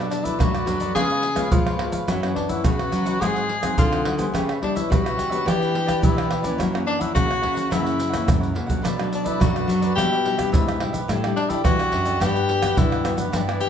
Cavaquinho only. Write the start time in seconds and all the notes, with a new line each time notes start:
0.09 muted cavaquinho stroke
0.23 A4 B4 D5
0.54 A4 B4 D5
0.67 D4 A4 B4 D5
0.80 A4 B4 D5
0.95 F4 B4 C#5 F5
1.10 B4 C#5 F5
1.23 muted cavaquinho stroke
1.37 B4 C#5 F5
1.67 B4 C#5 F5
1.80 F4 B4 C#5 F5
1.93 B4 C#5 F5
2.08 E4 B4 C#5 F#5
2.23 B4 C#5 F#5
2.36 muted cavaquinho stroke
2.50 B4 C#5 F#5
2.80 B4 C#5 F#5
2.93 E4 B4 C#5 F#5
3.06 B4 C#5 F#5
3.21 F#4 G#4 C5 F#5
3.35 G#4 C5 F#5
3.49 muted cavaquinho stroke
3.62 G#4 C5 F#5
3.93 G#4 C5 F#5
4.06 F#4 G#4 C5 F#5
4.18 G#4 C5 F#5
4.34 G4 B4 C#5 E5
4.49 B4 C#5 E5
4.61 muted cavaquinho stroke
4.75 B4 C#5 E5
5.04 B4 C#5 E5
5.17 G4 B4 C#5 E5
5.30 B4 C#5 E5
5.45 E4 G4 B4 D5
5.60 G4 B4 D5
5.73 muted cavaquinho stroke
5.86 G4 B4 D5
6.16 G4 B4 D5
6.28 E4 G4 B4 D5
6.42 G4 B4 D5
6.57 E4 A#4 C#5 F#5
6.72 A#4 C#5 F#5
6.85 muted cavaquinho stroke
6.99 A#4 C#5 F#5
7.28 A#4 C#5 F#5
7.41 E4 A#4 C#5 F#5
7.54 A#4 C#5 F#5
7.69 E4 A#4 C#5 F#5
7.83 A#4 C#5 F#5
7.96 muted cavaquinho stroke
8.09 A#4 C#5 F#5
8.40 A#4 C#5 F#5
8.53 E4 A#4 C#5 F#5
8.66 A#4 C#5 F#5
8.82 D4 A4 B4 D5
8.96 A4 B4 D5
9.10 muted cavaquinho stroke
9.24 A4 B4 D5
9.55 A4 B4 D5
9.68 D4 A4 B4 D5
9.81 A4 B4 D5
9.97 D4 G4 B4 E5
10.12 G4 B4 E5
10.24 muted cavaquinho stroke
10.37 G4 B4 E5
10.67 G4 B4 E5
10.80 D4 G4 B4 E5
10.93 G4 B4 E5
11.09 D4 A4 D5 G5
11.23 A4 D5 G5
11.37 muted cavaquinho stroke
11.50 A4 D5 G5
11.79 A4 D5 G5
11.92 D4 A4 D5 G5
12.06 A4 D5 G5
12.20 D4 G4 B4 F#5
12.35 G4 B4 F#5
12.49 muted cavaquinho stroke
12.61 G4 B4 F#5
12.91 G4 B4 F#5
13.04 D4 G4 B4 F#5
13.17 G4 B4 F#5
13.32 E4 G4 B4 D5
13.47 G4 B4 D5
13.61 muted cavaquinho stroke